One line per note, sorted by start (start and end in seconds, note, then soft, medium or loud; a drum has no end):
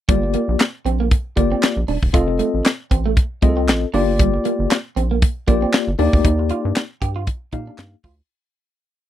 0.09 0.36 G1 loud
0.09 0.18 G3 medium
0.09 0.64 A#3 medium
0.09 0.64 F4 medium
0.09 0.64 G4 medium
0.09 0.64 D5 medium
0.09 kick loud
0.09 closed hi-hat loud
0.23 muted clean electric guitar stroke soft
0.34 0.43 A#3 medium
0.34 closed hi-hat medium
0.48 0.56 A#1 loud
0.60 muted clean electric guitar stroke soft
0.60 snare loud
0.60 clap medium
0.60 closed hi-hat medium
0.85 1.13 A#1 medium
0.85 0.94 C4 medium
0.85 closed hi-hat medium
1.00 1.07 A#3 medium
1.11 muted clean electric guitar stroke soft
1.11 kick loud
1.11 closed hi-hat medium
1.36 1.55 G1 medium
1.36 1.79 A#3 medium
1.36 1.46 A#3 medium
1.36 1.79 F4 medium
1.36 1.79 G4 medium
1.36 1.79 D5 medium
1.36 kick medium
1.36 closed hi-hat medium
1.52 1.58 C4 medium
1.63 snare loud
1.63 clap medium
1.63 closed hi-hat medium
1.77 1.84 A#1 medium
1.88 1.98 D#1 loud
1.88 1.97 D4 medium
1.88 open hi-hat medium
2.02 2.10 E1 medium
2.02 kick medium
2.13 2.41 F1 loud
2.13 2.68 C4 medium
2.13 2.69 F4 medium
2.13 2.23 F4 medium
2.13 2.69 A4 medium
2.13 2.69 D#5 medium
2.13 kick loud
2.13 closed hi-hat loud
2.28 muted clean electric guitar stroke soft
2.39 2.48 A3 medium
2.39 closed hi-hat medium
2.54 2.62 A1 medium
2.65 muted clean electric guitar stroke soft
2.65 snare medium
2.65 clap medium
2.65 closed hi-hat medium
2.91 3.18 A1 medium
2.91 3.00 C4 medium
2.91 kick medium
2.91 closed hi-hat medium
3.06 3.12 A3 medium
3.17 muted clean electric guitar stroke soft
3.17 kick loud
3.17 closed hi-hat medium
3.42 3.69 C2 medium
3.42 3.51 A3 medium
3.42 3.84 C4 medium
3.42 3.85 F4 medium
3.42 3.49 G#4 medium
3.42 3.85 D#5 medium
3.42 kick medium
3.42 closed hi-hat medium
3.49 3.88 A4 medium
3.57 3.63 C4 medium
3.68 3.85 A1 medium
3.68 snare loud
3.68 clap medium
3.68 closed hi-hat medium
3.94 4.39 G1 loud
3.94 4.76 A#3 medium
3.94 4.02 D4 medium
3.94 4.76 F4 medium
3.94 4.77 G4 medium
3.94 4.77 D5 loud
3.94 open hi-hat medium
4.19 4.28 G3 medium
4.19 kick loud
4.19 closed hi-hat loud
4.34 muted clean electric guitar stroke soft
4.45 4.54 A#3 medium
4.45 closed hi-hat medium
4.59 4.67 G1 medium
4.71 muted clean electric guitar stroke soft
4.71 snare loud
4.71 clap medium
4.71 closed hi-hat medium
4.96 5.24 A#1 medium
4.96 5.05 C4 medium
4.96 closed hi-hat medium
5.11 5.18 A#3 medium
5.22 muted clean electric guitar stroke soft
5.22 kick loud
5.22 closed hi-hat medium
5.47 5.65 A#1 medium
5.47 5.90 A#3 medium
5.47 5.56 A#3 medium
5.47 5.90 F4 medium
5.47 5.90 G4 medium
5.47 5.90 D5 medium
5.47 kick medium
5.47 closed hi-hat medium
5.62 5.69 C4 medium
5.74 snare loud
5.74 clap medium
5.74 closed hi-hat medium
5.88 5.95 G1 medium
5.99 6.09 D#2 loud
5.99 6.81 A#3 medium
5.99 6.08 D4 medium
5.99 6.81 D#4 medium
5.99 6.82 G4 medium
5.99 6.82 D5 loud
5.99 open hi-hat medium
6.13 6.21 D2 loud
6.13 kick loud
6.24 6.52 D#2 loud
6.24 6.33 D#4 medium
6.24 kick loud
6.24 closed hi-hat loud
6.39 muted clean electric guitar stroke soft
6.49 6.59 F4 medium
6.49 closed hi-hat medium
6.65 6.72 G2 loud
6.75 muted clean electric guitar stroke soft
6.75 snare loud
6.75 clap medium
6.75 closed hi-hat medium
7.01 7.29 G2 medium
7.01 7.10 G4 medium
7.01 kick medium
7.01 closed hi-hat medium
7.16 7.23 F4 medium
7.27 muted clean electric guitar stroke soft
7.27 kick loud
7.27 closed hi-hat medium
7.52 7.70 A#2 medium
7.52 7.95 A#3 medium
7.52 7.61 D#4 medium
7.52 7.95 D#4 medium
7.52 7.95 G4 medium
7.52 7.95 F5 medium
7.52 kick medium
7.52 closed hi-hat medium
7.67 7.74 D4 medium
7.78 7.96 G2 medium
7.78 snare medium
7.78 clap medium
7.78 closed hi-hat medium
8.04 8.21 D2 loud
8.04 8.13 F4 medium
8.04 kick medium
8.04 open hi-hat medium